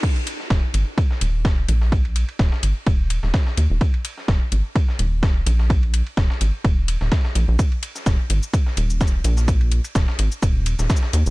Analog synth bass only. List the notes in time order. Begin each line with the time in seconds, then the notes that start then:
0.50 D#1
0.74 G#1
1.21 D#1
1.68 A#1
2.39 D#1
2.63 G#1
2.87 D#1
3.23 D#1
3.58 D#2
3.70 D#1
4.28 D#1
4.52 G#1
4.99 D#1
5.46 A#1
6.17 D#1
6.41 G#1
6.65 D#1
7.01 D#1
7.35 A#1
7.48 A#1
8.06 D#1
8.30 G#1
8.77 D#1
9.24 A#1
9.95 D#1
10.19 G#1
10.43 D#1
10.79 D#1
11.13 D#2
11.26 D#1